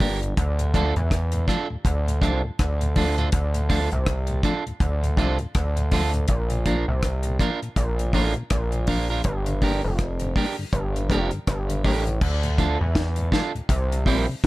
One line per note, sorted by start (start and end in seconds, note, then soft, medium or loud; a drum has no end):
0.00 0.34 G1 medium
0.00 0.10 G3 medium
0.00 0.10 A#3 medium
0.00 0.19 D4 medium
0.00 0.10 D4 medium
0.00 0.19 G4 medium
0.00 0.19 A#4 medium
0.00 kick medium
0.00 open hi-hat medium
0.22 0.29 G2 medium
0.22 0.29 D3 medium
0.22 closed hi-hat soft
0.37 0.93 D2 loud
0.37 kick loud
0.37 closed hi-hat medium
0.59 0.66 D2 medium
0.59 0.66 A2 medium
0.59 closed hi-hat medium
0.74 0.84 F3 medium
0.74 0.84 A3 medium
0.74 0.93 D4 medium
0.74 0.84 D4 medium
0.74 0.93 F4 medium
0.74 0.93 A4 medium
0.74 kick medium
0.74 closed hi-hat medium
0.96 1.03 D2 medium
0.96 1.46 E2 medium
0.96 1.03 A2 medium
0.96 closed hi-hat soft
1.11 kick loud
1.11 cross-stick loud
1.11 closed hi-hat medium
1.32 1.40 D2 medium
1.32 1.40 A2 medium
1.32 closed hi-hat medium
1.48 1.58 F3 medium
1.48 1.58 A3 medium
1.48 1.66 D4 medium
1.48 1.58 D4 medium
1.48 1.67 F4 medium
1.48 1.67 A4 medium
1.48 kick medium
1.48 cross-stick medium
1.48 closed hi-hat medium
1.70 1.77 D2 medium
1.70 1.77 A2 medium
1.85 2.20 D2 medium
1.85 kick loud
1.85 closed hi-hat loud
2.07 2.14 D2 medium
2.07 2.14 A2 medium
2.07 closed hi-hat soft
2.22 2.43 C2 medium
2.22 2.32 F3 medium
2.22 2.32 A3 medium
2.22 2.40 D4 medium
2.22 2.32 D4 medium
2.22 2.41 F4 medium
2.22 2.41 A4 medium
2.22 kick medium
2.22 closed hi-hat medium
2.44 2.51 D2 medium
2.44 2.51 A2 medium
2.59 3.30 D2 medium
2.59 kick loud
2.59 cross-stick loud
2.59 closed hi-hat loud
2.81 2.88 D2 medium
2.81 2.88 A2 medium
2.81 closed hi-hat soft
2.96 3.06 F3 medium
2.96 3.06 A3 medium
2.96 3.15 D4 medium
2.96 3.06 D4 medium
2.96 3.15 F4 medium
2.96 3.15 A4 medium
2.96 kick medium
2.96 open hi-hat medium
3.18 3.25 D2 medium
3.18 3.25 A2 medium
3.18 3.29 D4 medium
3.18 3.28 F4 medium
3.18 3.28 A4 medium
3.18 closed hi-hat soft
3.32 3.89 D2 loud
3.32 kick loud
3.32 closed hi-hat medium
3.54 3.62 D2 medium
3.54 3.62 A2 medium
3.54 closed hi-hat medium
3.69 3.80 F3 medium
3.69 3.80 A3 medium
3.69 3.88 D4 medium
3.69 3.80 D4 medium
3.69 3.89 F4 medium
3.69 3.89 A4 medium
3.69 kick medium
3.69 open hi-hat medium
3.91 4.42 C2 medium
3.91 3.99 D2 medium
3.91 3.99 A2 medium
3.91 closed hi-hat soft
4.06 kick loud
4.06 cross-stick loud
4.06 closed hi-hat medium
4.27 4.36 D2 medium
4.27 4.36 A2 medium
4.27 closed hi-hat medium
4.43 4.54 F3 medium
4.43 4.54 A3 medium
4.43 4.63 D4 medium
4.43 4.54 D4 medium
4.43 4.63 F4 medium
4.43 4.63 A4 medium
4.43 kick loud
4.43 closed hi-hat medium
4.66 4.73 D2 soft
4.66 4.73 A2 medium
4.66 closed hi-hat soft
4.80 5.16 D2 loud
4.80 kick loud
4.80 closed hi-hat medium
5.03 5.10 D2 medium
5.03 5.10 A2 medium
5.03 closed hi-hat soft
5.17 5.39 C2 loud
5.17 5.28 F3 medium
5.17 5.28 A3 medium
5.17 5.37 D4 medium
5.17 5.28 D4 medium
5.17 5.37 F4 medium
5.17 5.37 A4 medium
5.17 kick medium
5.17 closed hi-hat medium
5.39 5.47 D2 medium
5.39 5.47 A2 medium
5.39 closed hi-hat soft
5.55 6.26 D2 loud
5.55 kick loud
5.55 cross-stick medium
5.55 closed hi-hat loud
5.77 5.84 D2 medium
5.77 5.84 A2 medium
5.77 closed hi-hat medium
5.92 6.02 F3 medium
5.92 6.02 A3 medium
5.92 6.11 D4 medium
5.92 6.02 D4 medium
5.92 6.11 F4 medium
5.92 6.11 A4 medium
5.92 kick medium
5.92 open hi-hat medium
6.14 6.21 D2 medium
6.14 6.21 A2 medium
6.14 closed hi-hat soft
6.28 6.85 A#1 medium
6.28 kick loud
6.28 closed hi-hat medium
6.50 6.58 A#2 medium
6.50 closed hi-hat medium
6.66 6.76 F3 medium
6.66 6.76 A#3 medium
6.66 6.85 D4 medium
6.66 6.76 D4 medium
6.66 6.85 F4 medium
6.66 6.85 A#4 medium
6.66 kick medium
6.66 closed hi-hat medium
6.88 7.38 C2 medium
6.88 6.95 A#2 medium
7.03 kick loud
7.03 cross-stick loud
7.03 closed hi-hat loud
7.23 7.32 A#2 medium
7.23 closed hi-hat medium
7.39 7.50 F3 medium
7.39 7.50 A#3 medium
7.39 7.59 D4 medium
7.39 7.51 D4 medium
7.39 7.59 F4 medium
7.39 7.59 A#4 medium
7.39 kick medium
7.39 closed hi-hat medium
7.62 7.69 A#2 medium
7.62 closed hi-hat soft
7.76 8.12 A#1 loud
7.76 kick loud
7.76 closed hi-hat medium
7.99 8.06 A#2 medium
7.99 closed hi-hat soft
8.13 8.35 A1 loud
8.13 8.24 F3 medium
8.13 8.24 A#3 medium
8.13 8.33 D4 loud
8.13 8.24 D4 medium
8.13 8.33 F4 medium
8.13 8.33 A#4 loud
8.13 kick medium
8.13 open hi-hat medium
8.34 8.43 A#2 medium
8.34 closed hi-hat soft
8.50 9.22 A#1 medium
8.50 kick loud
8.50 cross-stick loud
8.50 closed hi-hat loud
8.72 8.80 A#2 medium
8.72 closed hi-hat soft
8.87 8.98 F3 medium
8.87 8.98 A#3 medium
8.87 9.07 D4 medium
8.87 8.98 D4 medium
8.87 9.07 F4 medium
8.87 9.07 A#4 medium
8.87 kick loud
8.87 open hi-hat medium
9.10 9.17 A#2 soft
9.10 9.21 D4 medium
9.10 9.21 F4 medium
9.10 9.20 A#4 medium
9.24 9.81 G1 loud
9.24 kick loud
9.24 closed hi-hat medium
9.46 9.54 G2 medium
9.46 9.54 D3 medium
9.46 closed hi-hat medium
9.62 9.72 G3 medium
9.62 9.72 A#3 medium
9.62 9.81 D4 medium
9.62 9.72 D4 medium
9.62 9.81 G4 medium
9.62 9.82 A#4 medium
9.62 kick medium
9.62 open hi-hat soft
9.84 10.34 F1 medium
9.84 9.91 G2 medium
9.84 9.91 D3 medium
9.99 kick loud
9.99 cross-stick loud
9.99 closed hi-hat medium
10.20 10.28 G2 medium
10.20 10.28 D3 medium
10.20 closed hi-hat medium
10.36 10.46 G3 medium
10.36 10.46 A#3 medium
10.36 10.55 D4 medium
10.36 10.46 D4 medium
10.36 10.55 G4 medium
10.36 10.55 A#4 medium
10.36 kick loud
10.36 open hi-hat medium
10.59 10.65 G2 medium
10.59 10.65 D3 medium
10.73 11.09 G1 medium
10.73 kick loud
10.73 closed hi-hat loud
10.96 11.02 G2 medium
10.96 11.02 D3 medium
10.96 closed hi-hat soft
11.10 11.31 F1 medium
11.10 11.20 G3 medium
11.10 11.20 A#3 medium
11.10 11.29 D4 medium
11.10 11.21 D4 medium
11.10 11.29 G4 medium
11.10 11.30 A#4 medium
11.10 kick medium
11.10 closed hi-hat medium
11.31 11.39 G2 medium
11.31 11.39 D3 medium
11.31 closed hi-hat soft
11.47 11.83 G1 loud
11.47 kick loud
11.47 cross-stick loud
11.47 closed hi-hat loud
11.70 11.76 G2 medium
11.70 11.76 D3 medium
11.70 closed hi-hat medium
11.84 12.20 A1 medium
11.84 11.94 G3 medium
11.84 11.94 A#3 medium
11.84 12.03 D4 medium
11.84 11.95 D4 medium
11.84 12.03 G4 medium
11.84 12.04 A#4 medium
11.84 kick medium
11.84 open hi-hat medium
12.07 12.13 G2 soft
12.07 12.13 D3 soft
12.07 closed hi-hat soft
12.21 12.77 D2 loud
12.21 kick loud
12.21 crash loud
12.43 12.50 D2 medium
12.43 12.50 A2 medium
12.43 closed hi-hat medium
12.58 12.68 F3 medium
12.58 12.68 A3 medium
12.58 12.77 D4 medium
12.58 12.69 D4 medium
12.58 12.77 F4 medium
12.58 12.78 A4 medium
12.58 kick medium
12.58 closed hi-hat medium
12.81 12.87 D2 medium
12.81 13.30 E2 medium
12.81 12.87 A2 medium
12.95 kick loud
12.95 snare loud
12.95 closed hi-hat medium
13.16 13.25 D2 medium
13.16 13.25 A2 medium
13.16 closed hi-hat medium
13.32 13.43 F3 medium
13.32 13.43 A3 medium
13.32 13.51 D4 medium
13.32 13.43 D4 medium
13.32 13.51 F4 medium
13.32 13.51 A4 medium
13.32 kick loud
13.32 snare medium
13.32 closed hi-hat medium
13.55 13.61 D2 medium
13.55 13.61 A2 medium
13.55 closed hi-hat soft
13.69 14.05 C2 loud
13.69 kick loud
13.69 closed hi-hat loud
13.92 13.98 C3 medium
13.92 closed hi-hat medium
14.06 14.27 A#1 medium
14.06 14.25 G3 medium
14.06 14.16 G3 medium
14.06 14.16 C4 medium
14.06 14.25 C4 loud
14.06 14.17 E4 medium
14.06 14.25 E4 loud
14.06 kick medium
14.06 open hi-hat medium
14.29 14.35 C3 medium